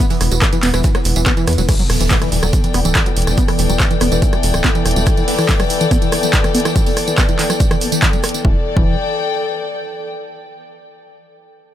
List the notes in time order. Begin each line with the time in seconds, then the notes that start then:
Already playing: E3 B3
0.00 shaker
0.10 E3, closed hi-hat, open hi-hat, tambourine
0.21 E1 E3, cross-stick, open hi-hat, ride, shaker
0.31 E1 F#3, closed hi-hat, tambourine
0.42 kick, cross-stick, snare, clap, closed hi-hat, shaker
0.53 E3, closed hi-hat, tambourine
0.63 E1 B3, clap, open hi-hat, ride, shaker
0.74 E1 E3, cross-stick, closed hi-hat, tambourine
0.84 E3, kick, closed hi-hat, tambourine, shaker
0.95 F#3, cross-stick, closed hi-hat, tambourine
1.05 E1, open hi-hat, ride, shaker
1.16 E1 E3, closed hi-hat, tambourine
1.26 B3, kick, cross-stick, clap, closed hi-hat, tambourine
1.37 E3, closed hi-hat, tambourine
1.47 E2 E3, cross-stick, open hi-hat, ride, shaker
1.53 closed hi-hat
1.58 E1 F#3, closed hi-hat, tambourine
1.69 E3 B3 A4, kick, cross-stick, closed hi-hat, crash, tambourine, impact, shaker
1.79 F#3, closed hi-hat, tambourine
1.90 E1, cross-stick, open hi-hat
2.00 E1 E3, closed hi-hat, tambourine
2.10 B3 G5, kick, snare, clap, closed hi-hat, tambourine, shaker
2.22 E3 D5, cross-stick, closed hi-hat, tambourine
2.32 E1 E3, open hi-hat, shaker
2.43 E1 F#3, cross-stick, closed hi-hat, tambourine
2.53 kick, closed hi-hat, tambourine, shaker
2.64 E3, closed hi-hat, tambourine
2.74 E1 B3, cross-stick, open hi-hat, shaker
2.85 D1 E3, closed hi-hat, tambourine
2.95 E3, kick, cross-stick, snare, clap, closed hi-hat, tambourine, shaker
3.06 F#3, closed hi-hat, tambourine
3.17 E1, open hi-hat, shaker
3.22 closed hi-hat
3.27 E1 E3, cross-stick, snare, closed hi-hat, tambourine
3.38 B3, kick, closed hi-hat, tambourine, shaker
3.48 E3, cross-stick, closed hi-hat, open hi-hat, tambourine
3.59 E1 E3, open hi-hat, shaker
3.69 E1 F#3, closed hi-hat, tambourine
3.79 kick, cross-stick, snare, clap, closed hi-hat, tambourine, shaker
3.91 E3, closed hi-hat, tambourine
4.01 E1 B3, cross-stick, open hi-hat, shaker
4.12 E1 E3, closed hi-hat, tambourine
4.22 E3, kick, closed hi-hat, tambourine, shaker
4.33 F#3, cross-stick, closed hi-hat, tambourine
4.43 E1, open hi-hat, shaker
4.54 D1 E3, cross-stick, closed hi-hat, tambourine
4.64 B3, kick, snare, clap, closed hi-hat, tambourine, shaker
4.75 E3, closed hi-hat, tambourine
4.86 E1 E3, cross-stick, open hi-hat, shaker
4.91 closed hi-hat
4.96 E1 F#3, closed hi-hat, tambourine
5.06 kick, cross-stick, closed hi-hat, tambourine, shaker
5.17 E3, closed hi-hat, tambourine
5.28 B3, open hi-hat
5.39 E3, cross-stick, closed hi-hat, tambourine
5.49 E3, kick, snare, clap, closed hi-hat, tambourine, shaker
5.60 F#3, cross-stick, closed hi-hat, tambourine
5.70 open hi-hat, shaker
5.81 E3, closed hi-hat, tambourine
5.91 B3, kick, cross-stick, closed hi-hat, tambourine, shaker
6.02 E3, closed hi-hat, tambourine
6.12 E3, cross-stick, open hi-hat, shaker
6.23 F#3, closed hi-hat, tambourine
6.33 kick, snare, clap, closed hi-hat, shaker
6.44 E3, cross-stick, closed hi-hat, tambourine
6.55 B3, open hi-hat, shaker
6.60 closed hi-hat
6.65 E3, cross-stick, snare, closed hi-hat, tambourine
6.76 E3, kick, closed hi-hat, tambourine, shaker
6.86 F#3, closed hi-hat, open hi-hat, tambourine
6.97 cross-stick, open hi-hat, shaker
7.08 E3, closed hi-hat, tambourine
7.17 B3, kick, cross-stick, snare, clap, closed hi-hat, tambourine, shaker
7.29 E3, closed hi-hat, tambourine
7.39 E3, clap, open hi-hat, shaker
7.50 F#3, cross-stick, closed hi-hat, tambourine
7.60 kick, closed hi-hat, tambourine, shaker
7.71 E3, cross-stick, closed hi-hat, tambourine
7.81 B3, open hi-hat, shaker
7.92 E3, closed hi-hat, tambourine
8.02 E3, kick, cross-stick, snare, clap, closed hi-hat, tambourine, shaker
8.13 F#3, closed hi-hat, tambourine
8.24 cross-stick, open hi-hat, shaker
8.29 closed hi-hat
8.34 E3, closed hi-hat, tambourine
8.45 E1 E3 A4, kick
8.51 D5
8.57 G5
8.77 E1 E3, kick